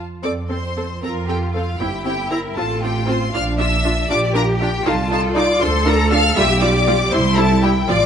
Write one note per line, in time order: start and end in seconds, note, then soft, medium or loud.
0.23 0.94 F2 medium
0.23 0.32 C4 medium
0.23 0.32 A4 medium
0.23 0.31 D5 medium
0.23 0.31 D6 medium
0.49 0.58 C4 medium
0.49 0.57 A4 soft
0.49 1.02 C5 medium
0.49 1.01 C6 medium
0.77 0.85 C4 medium
0.77 0.85 A4 medium
1.03 1.71 F2 medium
1.03 1.11 C4 soft
1.03 1.76 F4 medium
1.03 1.11 A4 soft
1.03 1.28 A#4 medium
1.03 1.11 A#5 medium
1.28 1.37 C4 soft
1.28 1.54 G4 medium
1.28 1.37 A4 medium
1.28 1.37 G5 medium
1.53 1.63 C4 soft
1.53 1.79 F4 medium
1.53 1.62 A4 soft
1.53 1.79 F5 medium
1.80 2.49 G1 medium
1.80 1.88 C4 medium
1.80 1.88 E4 medium
1.80 2.56 E4 medium
1.80 2.05 G4 medium
1.80 2.05 G5 medium
2.05 2.13 C4 medium
2.05 2.14 E4 medium
2.05 2.31 G4 medium
2.05 2.31 G5 medium
2.31 2.39 C4 medium
2.31 2.39 E4 medium
2.31 2.58 A#4 medium
2.31 2.39 A#5 medium
2.57 3.25 A1 medium
2.57 2.65 C4 medium
2.57 2.65 F4 medium
2.57 3.34 F4 medium
2.57 2.83 A4 medium
2.57 2.82 A5 medium
2.82 2.91 C4 medium
2.82 2.91 F4 medium
2.82 3.08 G4 medium
2.82 3.08 G5 medium
3.07 3.16 C4 medium
3.07 3.16 F4 medium
3.07 3.32 C5 medium
3.07 3.34 C6 medium
3.32 4.01 A#1 medium
3.32 3.42 D4 medium
3.32 4.08 D4 medium
3.32 3.42 F4 medium
3.32 3.58 F5 medium
3.32 3.43 F6 loud
3.59 3.67 D4 medium
3.59 3.67 F4 medium
3.59 4.09 E5 medium
3.59 4.09 E6 loud
3.85 3.93 D4 medium
3.85 3.93 F4 medium
4.09 4.77 A#1 loud
4.09 4.18 D4 medium
4.09 4.18 F4 medium
4.09 4.84 G4 loud
4.09 4.34 D5 medium
4.09 4.18 D6 loud
4.34 4.43 D4 medium
4.34 4.43 F4 medium
4.34 4.42 A#4 medium
4.34 4.44 A#5 loud
4.59 4.69 D4 medium
4.59 4.69 F4 medium
4.59 4.85 G4 medium
4.59 4.85 G5 medium
4.86 5.53 C2 medium
4.86 4.94 D#4 medium
4.86 4.94 F4 medium
4.86 5.62 F4 medium
4.86 4.94 A4 medium
4.86 5.11 A5 medium
5.11 5.19 D#4 medium
5.11 5.19 F4 medium
5.11 5.36 A4 medium
5.11 5.20 A5 loud
5.36 5.44 D#4 medium
5.36 5.44 F4 medium
5.36 5.62 D5 medium
5.36 5.62 D6 loud
5.61 6.29 D2 loud
5.61 5.70 D4 medium
5.61 5.69 F4 medium
5.61 6.38 A4 loud
5.61 5.87 C5 medium
5.61 5.87 C6 loud
5.86 5.94 D4 medium
5.86 5.94 F4 medium
5.86 5.94 A#4 medium
5.86 6.13 A#5 loud
6.11 6.19 D4 medium
6.11 6.19 F4 medium
6.11 6.37 F5 loud
6.11 6.37 F6 loud
6.36 7.04 B1 loud
6.36 6.44 G3 medium
6.36 6.45 F4 medium
6.36 7.14 G4 medium
6.36 6.62 E5 loud
6.36 6.63 E6 loud
6.61 6.70 G3 medium
6.61 6.69 F4 medium
6.61 7.12 D5 medium
6.61 7.13 D6 loud
6.87 6.95 G3 medium
6.87 6.95 F4 medium
7.11 7.80 C2 loud
7.11 7.20 G3 medium
7.11 7.20 E4 medium
7.11 7.89 E4 medium
7.11 7.37 C5 loud
7.11 7.38 C6 loud
7.36 7.45 G3 medium
7.36 7.45 E4 medium
7.36 7.63 A4 medium
7.36 7.64 A5 loud
7.63 7.71 G3 medium
7.63 7.71 E4 medium
7.63 7.71 G4 medium
7.63 7.89 G5 loud
7.88 8.06 A1 medium
7.88 7.96 F3 medium
7.88 7.96 F4 medium
7.88 8.06 F4 medium
7.88 8.06 D5 loud
7.88 8.06 D6 loud